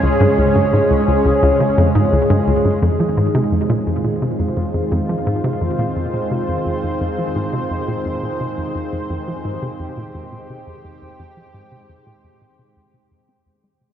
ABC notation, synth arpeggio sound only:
X:1
M:4/4
L:1/16
Q:1/4=86
K:Fm
V:1 name="Synth arpeggio sound" clef=bass
D,, G,, D,, G,, A,, D,, D,, D,, D,, D, F,, A,, D,, G,, D,, G,, | F,, F, A,, C, F,, B,, F,, B,, C, F,, F,, F,, F,, F, A,, C, | F,, B,, F,, B,, C, F,, F,, F,, F,, F, A,, C, F,, B,, F,, B,, | C, F,, F,, F,, F,, F, A,, C, F,, B,, F,, B,, C, F,, F,, F,, |
F,, F, A,, C, F,, B,, F,, B,, C, F,, C, F,, C F,, A, C, |]